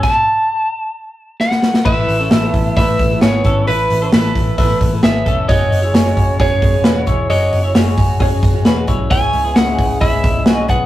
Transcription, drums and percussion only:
0.03 kick loud
0.03 crash medium
1.40 snare medium
1.51 snare medium
1.62 snare medium
1.74 snare medium
1.85 kick loud
1.85 crash medium
2.09 hi-hat pedal medium
2.09 open hi-hat medium
2.31 snare loud
2.31 hi-hat pedal medium
2.31 open hi-hat loud
2.54 kick medium
2.54 hi-hat pedal medium
2.54 open hi-hat medium
2.76 kick loud
2.76 snare soft
2.76 hi-hat pedal medium
2.76 open hi-hat loud
2.99 kick loud
2.99 hi-hat pedal medium
2.99 open hi-hat medium
3.21 snare loud
3.21 hi-hat pedal medium
3.21 open hi-hat medium
3.44 kick medium
3.44 hi-hat pedal medium
3.44 open hi-hat medium
3.67 hi-hat pedal medium
3.67 open hi-hat medium
3.90 hi-hat pedal medium
3.90 open hi-hat medium
4.12 snare loud
4.12 hi-hat pedal medium
4.12 open hi-hat loud
4.35 kick medium
4.35 hi-hat pedal medium
4.35 open hi-hat medium
4.58 kick loud
4.58 hi-hat pedal medium
4.58 open hi-hat loud
4.81 kick medium
4.81 hi-hat pedal medium
4.81 open hi-hat medium
5.03 snare loud
5.03 hi-hat pedal medium
5.03 open hi-hat medium
5.26 kick medium
5.26 hi-hat pedal medium
5.26 open hi-hat medium
5.49 kick loud
5.49 hi-hat pedal medium
5.49 open hi-hat medium
5.72 hi-hat pedal medium
5.72 open hi-hat medium
5.95 snare loud
5.95 hi-hat pedal medium
5.95 open hi-hat loud
6.17 kick medium
6.17 hi-hat pedal medium
6.17 open hi-hat medium
6.40 kick medium
6.40 hi-hat pedal medium
6.40 open hi-hat medium
6.62 kick loud
6.62 hi-hat pedal medium
6.62 open hi-hat medium
6.84 snare loud
6.84 hi-hat pedal medium
6.84 open hi-hat medium
7.07 kick medium
7.07 hi-hat pedal medium
7.07 open hi-hat medium
7.30 hi-hat pedal medium
7.30 open hi-hat medium
7.53 hi-hat pedal medium
7.53 open hi-hat medium
7.75 snare loud
7.75 hi-hat pedal medium
7.75 open hi-hat loud
7.98 kick medium
7.98 hi-hat pedal medium
7.98 open hi-hat medium
8.20 kick medium
8.20 hi-hat pedal medium
8.20 open hi-hat loud
8.43 kick loud
8.43 hi-hat pedal medium
8.43 open hi-hat medium
8.65 snare loud
8.65 hi-hat pedal medium
8.65 open hi-hat medium
8.87 kick medium
8.87 hi-hat pedal medium
8.87 open hi-hat medium
9.11 kick loud
9.11 hi-hat pedal medium
9.11 open hi-hat medium
9.33 hi-hat pedal medium
9.33 open hi-hat medium
9.56 snare loud
9.56 hi-hat pedal medium
9.56 open hi-hat loud
9.78 kick medium
9.78 hi-hat pedal medium
9.78 open hi-hat medium
10.01 kick loud
10.01 hi-hat pedal medium
10.01 open hi-hat medium
10.24 kick loud
10.24 hi-hat pedal medium
10.24 open hi-hat medium
10.46 snare loud
10.46 hi-hat pedal medium
10.46 open hi-hat medium
10.68 kick medium
10.68 hi-hat pedal medium
10.68 open hi-hat medium

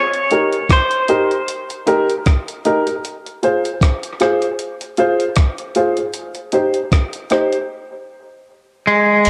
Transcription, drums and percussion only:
0.14 closed hi-hat soft
0.31 closed hi-hat medium
0.53 closed hi-hat medium
0.70 kick loud
0.70 cross-stick loud
0.70 closed hi-hat medium
0.91 closed hi-hat medium
1.08 closed hi-hat medium
1.31 closed hi-hat soft
1.48 closed hi-hat medium
1.70 closed hi-hat medium
1.87 closed hi-hat medium
2.10 closed hi-hat soft
2.26 kick loud
2.26 cross-stick medium
2.26 closed hi-hat medium
2.48 closed hi-hat medium
2.65 closed hi-hat medium
2.87 closed hi-hat soft
3.05 closed hi-hat medium
3.26 closed hi-hat soft
3.43 closed hi-hat medium
3.65 closed hi-hat medium
3.81 kick loud
3.81 cross-stick medium
3.81 closed hi-hat medium
4.03 closed hi-hat medium
4.20 cross-stick medium
4.20 closed hi-hat medium
4.42 closed hi-hat soft
4.59 closed hi-hat medium
4.81 closed hi-hat medium
4.97 closed hi-hat medium
5.20 closed hi-hat soft
5.36 kick loud
5.36 cross-stick loud
5.36 closed hi-hat medium
5.58 closed hi-hat medium
5.75 closed hi-hat medium
5.97 closed hi-hat soft
6.14 closed hi-hat medium
6.35 closed hi-hat soft
6.52 closed hi-hat medium
6.74 closed hi-hat medium
6.92 kick loud
6.92 cross-stick loud
6.92 closed hi-hat medium
7.13 closed hi-hat medium
7.30 cross-stick medium
7.30 closed hi-hat medium
7.53 closed hi-hat soft
9.25 closed hi-hat medium
9.25 crash medium

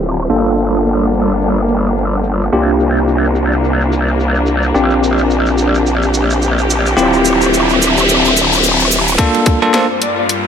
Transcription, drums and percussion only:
0.02 shaker medium
0.18 shaker soft
0.30 shaker soft
0.46 shaker soft
0.58 shaker medium
0.73 shaker soft
0.86 shaker soft
1.03 shaker soft
1.13 shaker medium
1.30 shaker soft
1.41 shaker soft
1.57 shaker soft
1.68 shaker medium
1.85 shaker soft
1.98 shaker medium
2.13 shaker soft
2.24 shaker medium
2.41 shaker soft
2.52 shaker soft
2.68 shaker soft
2.80 shaker medium
2.97 shaker soft
3.08 shaker soft
3.25 shaker soft
3.35 shaker medium
3.52 shaker soft
3.64 shaker soft
3.81 shaker soft
3.92 shaker medium
4.08 shaker soft
4.20 shaker soft
4.35 shaker soft
4.46 shaker medium
4.62 shaker soft
4.75 shaker soft
4.90 shaker soft
5.04 shaker medium
5.18 shaker soft
5.30 shaker medium
5.46 shaker soft
5.58 shaker medium
5.75 shaker soft
5.86 shaker soft
6.02 shaker soft
6.14 shaker medium
6.30 shaker soft
6.42 shaker soft
6.58 shaker soft
6.70 shaker medium
6.86 shaker soft
6.98 shaker soft
7.13 shaker soft
7.25 shaker medium
7.41 shaker soft
7.54 shaker medium
7.69 shaker soft
7.82 shaker medium
7.97 shaker soft
8.09 shaker medium
8.25 shaker soft
8.37 shaker medium
8.53 shaker soft
8.63 shaker soft
8.80 shaker soft
8.91 shaker medium
9.08 shaker soft
9.18 kick loud
9.18 closed hi-hat medium
9.35 snare soft
9.35 closed hi-hat soft
9.46 kick loud
9.46 closed hi-hat medium
9.62 snare soft
9.74 snare loud
9.74 closed hi-hat medium
10.02 closed hi-hat medium
10.29 closed hi-hat medium

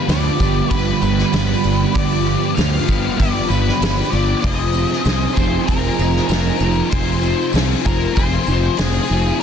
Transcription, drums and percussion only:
0.09 snare loud
0.09 open hi-hat medium
0.09 tambourine loud
0.40 kick medium
0.40 tambourine medium
0.71 kick medium
0.71 open hi-hat soft
0.71 tambourine medium
0.88 tambourine soft
1.03 tambourine medium
1.19 snare soft
1.33 snare loud
1.33 open hi-hat medium
1.33 tambourine loud
1.49 tambourine soft
1.95 kick loud
1.95 open hi-hat medium
1.95 tambourine soft
2.11 tambourine soft
2.41 tambourine soft
2.57 snare loud
2.57 open hi-hat medium
2.57 tambourine loud
2.89 kick medium
2.89 tambourine medium
3.20 kick loud
3.20 open hi-hat medium
3.20 tambourine medium
3.35 tambourine soft
3.51 tambourine medium
3.69 snare soft
3.82 snare loud
3.82 open hi-hat medium
3.82 tambourine medium
3.99 tambourine soft
4.44 kick loud
4.44 open hi-hat medium
4.44 tambourine soft
4.59 tambourine soft
4.74 tambourine medium
4.90 snare soft
4.90 tambourine soft
5.05 snare loud
5.05 open hi-hat medium
5.05 tambourine loud
5.37 kick medium
5.37 tambourine medium
5.67 kick loud
5.67 open hi-hat medium
5.67 tambourine medium
5.85 tambourine soft
6.00 tambourine medium
6.16 snare soft
6.29 snare loud
6.29 open hi-hat medium
6.29 tambourine loud
6.92 kick loud
6.92 open hi-hat medium
6.92 tambourine soft
7.07 tambourine soft
7.22 tambourine medium
7.39 tambourine soft
7.53 snare loud
7.53 open hi-hat medium
7.53 tambourine loud
7.85 kick medium
7.85 tambourine medium
8.01 tambourine soft
8.16 kick loud
8.16 open hi-hat soft
8.16 tambourine medium
8.32 tambourine soft
8.47 tambourine medium
8.63 tambourine soft
8.78 snare loud
8.78 open hi-hat medium
8.78 tambourine medium
9.11 tambourine soft
9.26 tambourine soft

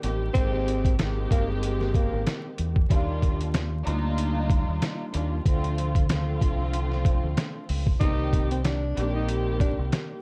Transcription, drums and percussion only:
0.03 closed hi-hat medium
0.35 kick loud
0.35 closed hi-hat medium
0.68 closed hi-hat medium
0.85 kick medium
0.85 closed hi-hat medium
0.99 snare loud
0.99 closed hi-hat medium
1.31 kick medium
1.31 closed hi-hat medium
1.63 closed hi-hat loud
1.81 snare soft
1.94 kick loud
1.94 closed hi-hat medium
2.27 snare loud
2.27 closed hi-hat medium
2.58 closed hi-hat medium
2.76 kick medium
2.90 kick loud
2.90 closed hi-hat medium
3.22 kick medium
3.22 closed hi-hat medium
3.41 closed hi-hat medium
3.54 snare loud
3.54 closed hi-hat medium
3.87 closed hi-hat medium
4.18 closed hi-hat loud
4.50 kick loud
4.50 closed hi-hat medium
4.82 snare loud
4.82 closed hi-hat medium
5.14 closed hi-hat medium
5.45 kick loud
5.45 closed hi-hat medium
5.64 closed hi-hat medium
5.78 closed hi-hat medium
5.95 kick medium
5.95 closed hi-hat medium
6.09 snare loud
6.09 closed hi-hat medium
6.41 kick medium
6.41 closed hi-hat medium
6.73 closed hi-hat medium
6.92 snare soft
7.05 kick loud
7.05 closed hi-hat medium
7.37 snare loud
7.37 closed hi-hat medium
7.69 open hi-hat medium
7.87 kick medium
8.01 kick loud
8.01 closed hi-hat medium
8.33 kick medium
8.33 closed hi-hat medium
8.51 closed hi-hat medium
8.64 snare loud
8.64 closed hi-hat medium
8.97 closed hi-hat medium
9.29 closed hi-hat loud
9.60 kick loud
9.60 closed hi-hat medium
9.92 snare loud
9.92 closed hi-hat medium

